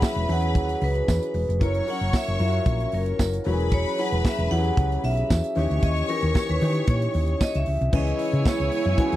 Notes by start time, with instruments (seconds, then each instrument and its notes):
Already playing: french horn section E3 C#4 F#4 G#4, grand piano F#3 C#4 E4 G#4, string section B4 B5
0.02 vibraphone E5, kick, snare, tambourine
0.16 fingered electric bass E1, closed hi-hat
0.28 fingered electric bass E2, grand piano F#3 C#4 E4 G#4, open hi-hat
0.32 vibraphone F#5
0.42 closed hi-hat
0.55 fingered electric bass D#2, kick, closed hi-hat
0.69 closed hi-hat
0.81 fingered electric bass C#2, vibraphone B4, open hi-hat
0.95 closed hi-hat
1.08 fingered electric bass E2, kick, snare, tambourine
1.22 closed hi-hat
1.34 fingered electric bass E1, open hi-hat
1.49 fingered electric bass F1, closed hi-hat
1.60 fingered electric bass F#1, grand piano F#3 C#4 E4 A#4, french horn section F#3 E4 A#4, string section C#5 C#6, vibraphone C#5, kick, closed hi-hat
1.75 closed hi-hat
1.87 grand piano F#3 C#4 E4 A#4, vibraphone F#5, open hi-hat
2.01 fingered electric bass F#1, closed hi-hat
2.13 vibraphone E5, kick, snare, tambourine
2.27 fingered electric bass F#1, closed hi-hat
2.39 fingered electric bass F#2, grand piano F#3 C#4 E4 F4, vibraphone E5, open hi-hat
2.48 grand piano F#4
2.52 closed hi-hat
2.66 fingered electric bass A#1, kick, closed hi-hat
2.80 closed hi-hat
2.92 fingered electric bass F#1, vibraphone A#4, open hi-hat
3.06 closed hi-hat
3.19 fingered electric bass F#1, kick, snare, tambourine
3.33 closed hi-hat
3.44 fingered electric bass E1, french horn section E3 F#4 G#4, grand piano F#3 C#4 E4 F#4, string section B4 B5, open hi-hat
3.53 grand piano G#4
3.60 closed hi-hat
3.72 vibraphone C#5, kick, closed hi-hat
3.85 closed hi-hat
3.98 grand piano F#3 C#4 E4 G#4, vibraphone F#5, open hi-hat
4.12 fingered electric bass E1, closed hi-hat
4.25 vibraphone E5, kick, snare, tambourine
4.38 fingered electric bass E1, closed hi-hat
4.51 fingered electric bass E2, grand piano F#3 C#4 E4 G4, vibraphone F#5, open hi-hat
4.59 grand piano G#4
4.64 closed hi-hat
4.77 fingered electric bass C#2, kick, closed hi-hat
4.92 closed hi-hat
5.04 fingered electric bass B1, vibraphone E5, open hi-hat
5.17 closed hi-hat
5.30 fingered electric bass E2, kick, snare, tambourine
5.44 closed hi-hat
5.55 fingered electric bass D#2, grand piano E3 C#4 D#4 G4, french horn section E3 D#4 G4, string section C#5 C#6, snare, open hi-hat
5.70 fingered electric bass D2, closed hi-hat
5.83 fingered electric bass D#2, vibraphone D#5, kick, closed hi-hat
5.96 closed hi-hat
6.09 grand piano E3 C#4 D#4 G4, vibraphone A#4, open hi-hat
6.23 fingered electric bass D#2, closed hi-hat
6.35 kick, snare, tambourine
6.49 fingered electric bass D#2, vibraphone B4, closed hi-hat
6.61 fingered electric bass D#3, grand piano E3 C#4 D#4 G4, open hi-hat
6.75 closed hi-hat
6.87 fingered electric bass A#2, vibraphone C#5, kick, closed hi-hat
7.02 closed hi-hat
7.14 fingered electric bass D#2, open hi-hat
7.28 closed hi-hat
7.41 vibraphone D#5, kick, snare, tambourine
7.55 fingered electric bass C#2, vibraphone E5, closed hi-hat
7.66 fingered electric bass C#2, open hi-hat
7.81 fingered electric bass C2, closed hi-hat
7.93 fingered electric bass C#2, french horn section C#3 G#3 B3 E4, grand piano E3 G#3 B3 C#4 G#4, string section E4 C#5 G#5, vibraphone D#5, kick, crash
8.06 closed hi-hat
8.19 open hi-hat
8.33 fingered electric bass C#3, closed hi-hat
8.45 vibraphone C#5, kick, snare, tambourine
8.60 fingered electric bass C#2, closed hi-hat
8.72 open hi-hat
8.85 fingered electric bass F#2, closed hi-hat
8.98 grand piano E3 G#3 B3 C#4 F#4, vibraphone G#5, kick, closed hi-hat
9.06 grand piano G#4
9.12 fingered electric bass E2, closed hi-hat